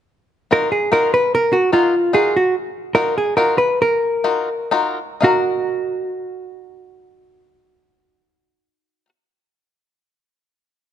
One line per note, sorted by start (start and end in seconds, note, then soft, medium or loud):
0.51 0.72 D#4 medium
0.51 0.72 F4 soft
0.51 0.72 F#4 soft
0.51 0.73 A#4 medium
0.51 0.71 A#4 medium
0.72 0.92 G#4 medium
0.92 1.13 D#4 medium
0.92 1.13 F4 medium
0.92 1.13 F#4 soft
0.92 1.13 A#4 medium
1.14 1.34 B4 medium
1.35 1.55 A#4 medium
1.53 1.73 F#4 medium
1.72 1.94 D#4 soft
1.72 1.94 F4 medium
1.72 2.11 F4 medium
1.72 1.94 F#4 soft
1.72 1.94 A#4 soft
2.13 2.34 D#4 medium
2.13 2.35 F4 soft
2.13 2.35 F#4 medium
2.13 2.36 G#4 medium
2.13 2.35 A#4 medium
2.37 2.54 F#4 medium
2.95 3.16 D#4 soft
2.95 3.16 F4 soft
2.95 3.16 F#4 soft
2.95 3.17 A#4 medium
2.95 3.16 A#4 medium
3.18 3.36 G#4 medium
3.37 3.58 D#4 medium
3.37 3.59 F4 soft
3.37 3.59 F#4 medium
3.37 3.58 A#4 medium
3.37 3.59 A#4 medium
3.58 3.80 B4 medium
3.82 4.70 A#4 medium
4.24 4.48 D#4 soft
4.24 4.48 F4 soft
4.24 4.48 F#4 soft
4.24 4.48 A#4 soft
4.71 4.98 D#4 medium
4.71 4.98 F4 medium
4.71 4.98 F#4 medium
4.71 4.98 A#4 medium
5.21 9.05 D#4 medium
5.21 9.08 F#4 medium
5.21 9.09 F#4 medium
5.21 9.09 A#4 medium
5.21 9.07 F5 medium